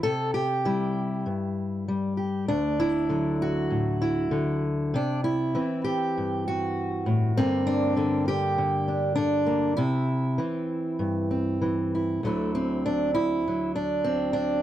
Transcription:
0.03 C3 A4
0.34 G4
0.65 G3 E4
1.26 G2
1.88 G3
2.17 G4
2.48 D2 D4
2.80 E4
3.09 D3 F#3
3.42 F#4
3.70 A2
4.02 E4
4.31 D3
4.94 C3 D4
5.24 E4
5.55 E3 C4
5.84 G4
6.17 G2
6.48 F#4
7.06 A2
7.37 G2 D3 A#3 C4
7.67 D4
7.97 D3 A#3
8.28 G4
8.58 D3
8.88 D4
9.15 D3 D4
9.46 A#3
9.77 C3 E4
10.38 E3 C4
10.99 G2
11.31 C4
11.62 E3
11.95 E4
12.23 D2 D3 F#3 A3 E4
12.55 C4
12.86 D4
13.14 E4
13.48 F#3
13.75 D4
14.04 C4
14.33 D4

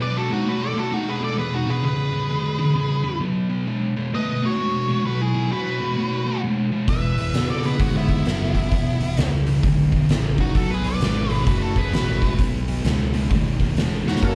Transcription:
0.01 B2 G#3 B4 D5
0.17 F#4 A4
0.29 B2 G#3 F#4
0.34 D#4
0.46 B2 A3 B4
0.50 F#4
0.63 A4 D5
0.75 B2 A3 A4
0.80 F#4
0.92 B2 G#3 D#4 F#4
1.08 G#4 B4
1.21 B2 G#3 A4 D5
1.38 E2 B2 G#4 B4
1.54 D#4 F#4
1.67 E2 B2 G#4 B4
1.84 E2 C#3 G#4 B4
2.13 E2 C#3
2.29 E2 D3
2.58 E2 D3
2.75 E2 C#3
3.04 E2 C#3
3.21 B2 F#3
3.50 B2 F#3
3.68 B2 G#3
3.96 B2 G#3
4.14 B2 A3 B4 D#5
4.42 B2 A3 F#4 C#5
4.58 B2 G#3
4.88 B2 G#3
5.05 B2 F#3 F#4 B4
5.21 E4 G#4
5.34 B2 F#3
5.51 B2 G#3 F#4 B4
5.80 B2 G#3
5.97 B2 A3
6.26 B2 A3
6.44 B2 G#3
6.72 B2 G#3
6.88 E2 B2 B4 E5, kick, open hi-hat
7.18 E2 B2, open hi-hat
7.34 E2 B2 C#3, snare, open hi-hat
7.50 A4 D5
7.63 E2 C#3 G#4 B4, open hi-hat
7.80 E2 G#2 D3 B3 F#4, kick, open hi-hat
7.96 B3 E4
8.09 E2 D3, kick, open hi-hat
8.25 E2 F#2 C#3, snare, open hi-hat
8.54 E2 C#3, kick, open hi-hat
8.71 E2 B2, kick, open hi-hat
9.01 E2 B2, muted fingered electric bass stroke, open hi-hat
9.17 C#2 E2 C#3, snare, open hi-hat
9.47 E2 C#3, open hi-hat
9.62 B1 E2 D3, kick, open hi-hat
9.92 E2 D3, kick, open hi-hat
10.09 A1 E2 C#3, snare, open hi-hat
10.38 E2 C#3 D#4 F#4, kick, open hi-hat
10.55 B1 B2 F#3 F#4 A4, kick, open hi-hat
10.70 G#4 B4
10.84 B2 F#3 D5, open hi-hat
10.89 B4
11.01 G#1 B2 G#3, snare, open hi-hat
11.30 B2 G#3 G#4 B4, open hi-hat
11.46 F#1 B2 A3 F#4 B4, kick, open hi-hat
11.62 F#4 A4
11.76 B2 A3 G#4 B4, kick, open hi-hat
11.92 A1 B2 G#3 F#4 B4, snare, open hi-hat
12.21 B2 G#3, kick, open hi-hat
12.39 B1 B2 F#3, kick, open hi-hat
12.68 B2 F#3, open hi-hat
12.84 C#2 B2 G#3, snare, open hi-hat
13.14 B2 G#3, open hi-hat
13.31 D#2 B2 A3, kick, open hi-hat
13.60 B2 A3, kick, open hi-hat
13.77 E2 B2 G#3, snare, open hi-hat
14.05 B2 G#3 D#4 F#4, snare
14.16 snare
14.22 F#2 C#3 A#3 C#4 F#4 A4 A#4, kick, open hi-hat

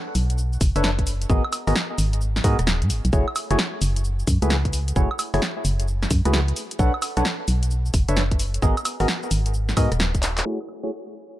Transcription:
0.15 B1, open hi-hat, cabasa
0.30 closed hi-hat, cabasa
0.38 cabasa
0.53 cabasa
0.61 F#1, kick, open hi-hat, cabasa
0.76 F#1 D4 A4 B4 C#5 E5, closed hi-hat, cabasa
0.84 snare, cabasa
0.99 kick, closed hi-hat
1.07 open hi-hat, cabasa
1.22 closed hi-hat, cabasa
1.30 G#1 B3 F#4 G#4 A#4 D#5, kick, cabasa
1.44 high woodblock
1.53 open hi-hat, cabasa, high woodblock
1.67 G#1 B3 F#4 G#4 A#4 D#5, cross-stick, open hi-hat, cabasa
1.75 snare, cabasa
1.98 G#1, open hi-hat, cabasa
2.13 closed hi-hat, cabasa
2.21 cabasa
2.36 snare, cabasa
2.44 G#2 B3 F#4 G#4 A#4 D#5, kick, open hi-hat, cabasa
2.59 D#1, cross-stick, closed hi-hat, cabasa
2.67 snare, cabasa
2.82 G#2, closed hi-hat
2.90 G#1, open hi-hat, cabasa
3.05 B1, closed hi-hat, cabasa
3.13 F#1 A3 E4 F#4 G#4 C#5, kick, cabasa
3.28 high woodblock
3.36 open hi-hat, cabasa, high woodblock
3.51 F#1 A3 E4 F#4 G#4 C#5, cross-stick, closed hi-hat, cabasa
3.59 snare, cabasa
3.82 F#1, open hi-hat, cabasa
3.96 closed hi-hat, cabasa
4.04 cabasa
4.19 cabasa
4.27 F#2, kick, open hi-hat, cabasa
4.42 C#2 A3 E4 F#4 G#4 B4, closed hi-hat, cabasa
4.50 snare, cabasa
4.65 kick, closed hi-hat
4.73 open hi-hat, cabasa
4.88 closed hi-hat, cabasa
4.96 F#1 A3 E4 F#4 G#4 C#5, kick, cabasa
5.11 high woodblock
5.19 open hi-hat, cabasa, high woodblock
5.34 F#1 A3 E4 F#4 G#4 C#5, cross-stick, open hi-hat, cabasa
5.42 snare, cabasa
5.65 F#1, open hi-hat, cabasa
5.80 closed hi-hat, cabasa
5.88 cabasa
6.03 snare, cabasa
6.11 F#2, kick, open hi-hat, cabasa
6.25 C#2 A3 E4 F#4 G#4 B4, cross-stick, closed hi-hat, cabasa
6.33 snare, cabasa
6.48 closed hi-hat
6.56 open hi-hat, cabasa
6.71 closed hi-hat, cabasa
6.79 B1 D4 A4 B4 C#5 F#5, kick, cabasa
6.94 high woodblock
7.02 open hi-hat, cabasa, high woodblock
7.17 B1 D4 A4 B4 C#5 F#5, cross-stick, closed hi-hat, cabasa
7.25 snare, cabasa
7.48 B1, open hi-hat, cabasa
7.63 closed hi-hat, cabasa
7.71 cabasa
7.86 cabasa
7.94 F#1, kick, open hi-hat, cabasa
8.09 F#1 D4 A4 B4 C#5 E5, closed hi-hat, cabasa
8.17 snare, cabasa
8.31 kick, closed hi-hat
8.39 open hi-hat, cabasa
8.54 closed hi-hat, cabasa
8.62 G#1 B3 F#4 G#4 A#4 D#5, kick, cabasa
8.77 closed hi-hat, cabasa, high woodblock
8.85 open hi-hat, cabasa, high woodblock
9.00 G#1 B3 F#4 G#4 A#4 D#5, cross-stick, open hi-hat, cabasa
9.08 snare, cabasa
9.23 cabasa
9.31 G#1, open hi-hat, cabasa
9.46 closed hi-hat, cabasa
9.54 cabasa
9.69 snare, cabasa
9.77 G#2 B3 F#4 G#4 A#4 D#5, kick, open hi-hat, cabasa, high woodblock
9.92 D#1, cross-stick, closed hi-hat, cabasa
10.00 snare, cabasa
10.15 kick, closed hi-hat, cabasa
10.23 clap, open hi-hat, cabasa
10.38 clap, closed hi-hat, cabasa
10.46 A3 E4 F#4 G#4 C#5
10.61 high woodblock
10.69 high woodblock
10.83 A3 E4 F#4 G#4 C#5, closed hi-hat
11.29 closed hi-hat

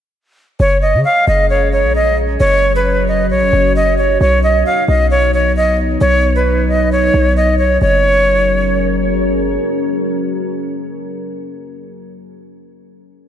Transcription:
0.60 F#1 F#3 C#4 G#4 C#5 A#5
0.82 D#5
0.94 C#3
1.05 F5
1.28 F#1 D#5
1.50 C#5
1.72 C#5
1.85 A#1
1.95 D#5
2.40 F#1 F#4 C#5
2.76 B4
3.08 D#5
3.30 A#1 C#5
3.42 F#1
3.53 F#1
3.76 D#5
3.98 C#5
4.21 B1 B3 D#4 C#5
4.43 D#5
4.66 F5
4.88 B1 D#5
5.11 C#5
5.34 C#5
5.57 D#5
6.01 B1 C#5
6.36 B4
6.69 D#5
6.92 C#5
7.14 B1
7.37 D#5
7.59 C#5
7.82 F#1 F#3 C#4 G#4 A#4 C#5

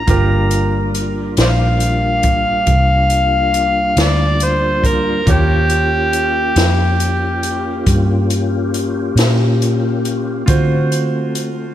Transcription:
Already playing: A#5
0.06 G1 G3 A#3 D4 F4 G4, kick, closed hi-hat
0.10 A#4
0.51 closed hi-hat
0.95 closed hi-hat
1.37 A#1 C5 D5 F5, snare, closed hi-hat
1.80 closed hi-hat
2.23 kick, closed hi-hat
2.67 C2, kick, closed hi-hat
3.10 closed hi-hat
3.54 closed hi-hat
3.97 D2, snare, closed hi-hat
4.02 D5
4.40 C5, closed hi-hat
4.84 A#4, kick, closed hi-hat
5.26 D#2 A#3 C#4 F4 G4 C#5, kick, closed hi-hat
5.31 G4
5.70 closed hi-hat
6.13 closed hi-hat
6.56 F2, snare, closed hi-hat
7.00 closed hi-hat
7.43 closed hi-hat
7.87 G2, kick, closed hi-hat
8.30 closed hi-hat
8.74 closed hi-hat
9.16 A#2, snare, closed hi-hat
9.62 closed hi-hat
10.05 closed hi-hat
10.46 D3 A3 C4 F4 F#4 C5, kick, closed hi-hat
10.92 closed hi-hat
11.35 closed hi-hat

